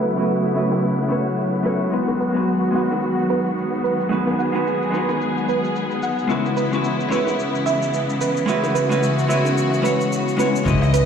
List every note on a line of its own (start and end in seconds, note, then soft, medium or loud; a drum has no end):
0.00 1.89 C#3 medium
0.00 6.26 F#3 medium
0.00 0.13 A3 medium
0.00 1.89 A3 medium
0.00 1.89 B3 medium
0.00 0.14 C#4 medium
0.00 0.14 E4 medium
0.00 1.89 E4 medium
0.00 0.15 F#4 medium
0.00 10.67 F#4 medium
0.00 0.15 B4 medium
0.00 0.29 B4 medium
0.00 10.67 F#5 medium
0.00 shaker medium
0.16 0.53 A3 medium
0.16 0.54 C#4 medium
0.16 0.54 E4 medium
0.16 0.55 F#4 medium
0.16 0.55 B4 medium
0.16 shaker soft
0.30 shaker soft
0.46 shaker soft
0.54 1.07 A3 medium
0.54 1.08 C#4 medium
0.54 1.09 E4 medium
0.54 1.09 F#4 medium
0.54 1.10 B4 medium
0.54 0.83 E5 medium
0.54 shaker medium
0.72 high bongo medium
0.72 shaker soft
0.85 shaker soft
0.99 high bongo soft
0.99 shaker soft
1.08 1.62 A3 medium
1.08 1.62 C#4 medium
1.08 1.63 E4 medium
1.08 1.63 F#4 medium
1.08 1.28 B4 medium
1.08 1.63 C#5 medium
1.08 shaker medium
1.28 shaker soft
1.40 shaker soft
1.55 shaker soft
1.63 1.89 A3 medium
1.63 1.90 C#4 medium
1.63 1.90 E4 medium
1.63 1.90 F#4 medium
1.63 1.92 B4 medium
1.63 1.91 C#5 medium
1.63 shaker medium
1.82 shaker soft
1.90 6.26 D#3 medium
1.90 2.31 G#3 medium
1.90 10.62 G#3 medium
1.90 2.31 B3 medium
1.90 10.62 B3 medium
1.90 2.32 D#4 medium
1.90 2.32 F#4 medium
1.90 4.09 F#4 medium
1.90 2.33 B4 medium
1.90 shaker soft
2.08 high bongo medium
2.08 shaker soft
2.21 2.47 B4 medium
2.21 shaker medium
2.33 2.69 G#3 medium
2.33 2.71 B3 medium
2.33 2.72 D#4 medium
2.33 2.72 F#4 medium
2.33 2.72 B4 medium
2.37 shaker soft
2.48 shaker soft
2.64 shaker soft
2.71 4.07 G#3 medium
2.71 4.07 B3 medium
2.71 4.08 D#4 medium
2.75 4.09 F#4 medium
2.75 4.10 B4 medium
2.75 3.01 F#5 medium
2.75 shaker medium
2.91 high bongo medium
2.91 shaker soft
3.03 shaker soft
3.19 shaker soft
3.30 3.46 B4 medium
3.30 high bongo medium
3.30 shaker medium
3.46 shaker soft
3.58 shaker soft
3.74 shaker soft
3.84 4.10 B4 medium
3.84 shaker medium
4.01 shaker soft
4.09 4.50 G#3 medium
4.09 4.50 B3 medium
4.09 4.50 D#4 medium
4.09 4.51 F#4 medium
4.09 6.28 G#4 medium
4.09 4.51 B4 medium
4.09 shaker soft
4.27 high bongo medium
4.27 shaker soft
4.39 4.65 F#5 medium
4.39 shaker medium
4.52 4.89 G#3 medium
4.52 4.90 B3 medium
4.52 4.90 D#4 medium
4.52 4.91 F#4 medium
4.52 4.91 B4 medium
4.52 shaker soft
4.67 shaker soft
4.82 shaker soft
4.91 6.26 G#3 medium
4.91 6.26 B3 medium
4.91 6.27 D#4 medium
4.91 5.10 B4 medium
4.91 shaker medium
4.95 6.28 F#4 medium
4.95 6.29 B4 medium
5.09 high bongo medium
5.09 shaker soft
5.21 shaker soft
5.38 shaker soft
5.49 5.74 B4 medium
5.49 shaker medium
5.64 shaker soft
5.76 shaker soft
5.91 shaker soft
6.03 6.29 F#5 medium
6.03 shaker medium
6.19 shaker soft
6.28 10.62 C#3 medium
6.28 10.62 E3 medium
6.28 6.68 G#3 medium
6.28 6.69 C#4 medium
6.28 6.69 E4 medium
6.28 8.46 E4 medium
6.28 6.69 F#4 medium
6.28 6.70 B4 medium
6.28 shaker soft
6.46 high bongo soft
6.46 shaker soft
6.57 6.73 B4 medium
6.57 shaker medium
6.71 7.07 G#3 medium
6.71 7.09 C#4 medium
6.71 7.09 E4 medium
6.71 7.10 F#4 medium
6.71 7.10 B4 medium
6.71 shaker soft
6.84 shaker soft
7.00 shaker soft
7.09 8.44 G#3 medium
7.09 8.45 C#4 medium
7.09 8.45 E4 medium
7.09 7.38 B4 medium
7.09 shaker medium
7.14 8.46 F#4 medium
7.14 8.47 B4 medium
7.27 high bongo medium
7.27 shaker soft
7.40 shaker soft
7.55 shaker soft
7.66 7.92 E5 medium
7.66 high bongo medium
7.66 shaker medium
7.82 shaker soft
7.94 shaker soft
8.10 shaker soft
8.21 8.37 B4 medium
8.21 shaker medium
8.37 shaker soft
8.46 8.86 G#3 medium
8.46 8.87 C#4 medium
8.46 8.87 E4 medium
8.46 10.64 F#4 medium
8.46 8.88 F#4 medium
8.46 shaker soft
8.50 8.88 B4 medium
8.64 high bongo medium
8.64 shaker soft
8.75 9.01 B4 medium
8.75 shaker medium
8.89 9.26 G#3 medium
8.89 9.26 C#4 medium
8.89 9.27 E4 medium
8.89 9.27 F#4 medium
8.89 9.28 B4 medium
8.89 shaker soft
9.03 shaker soft
9.19 shaker soft
9.27 9.81 G#3 medium
9.27 9.81 C#4 medium
9.27 9.82 E4 medium
9.27 9.82 F#4 medium
9.27 9.83 B4 medium
9.27 9.56 E5 medium
9.27 shaker medium
9.45 high bongo medium
9.45 shaker soft
9.58 shaker soft
9.72 high bongo soft
9.72 shaker soft
9.82 10.35 G#3 medium
9.82 10.35 C#4 medium
9.82 10.36 E4 medium
9.82 10.36 F#4 medium
9.82 10.01 B4 medium
9.82 10.37 C#5 medium
9.82 shaker medium
10.01 shaker soft
10.13 shaker soft
10.28 shaker soft
10.37 10.62 G#3 medium
10.37 10.63 C#4 medium
10.37 10.63 E4 medium
10.37 10.64 F#4 medium
10.37 10.65 B4 medium
10.37 10.64 C#5 medium
10.37 shaker medium
10.56 shaker soft
10.64 10.99 C#2 medium
10.64 11.05 C#3 medium
10.64 11.05 E3 medium
10.64 11.04 G#3 medium
10.64 11.05 G#3 medium
10.64 11.05 B3 medium
10.64 11.04 C#4 medium
10.64 11.05 D#4 medium
10.64 11.05 E4 medium
10.64 11.05 B4 medium
10.64 11.05 D#5 medium
10.64 kick loud
10.64 shaker soft
10.82 low woodblock medium
10.82 shaker soft
10.93 11.05 B4 medium
10.93 closed hi-hat medium
10.93 shaker medium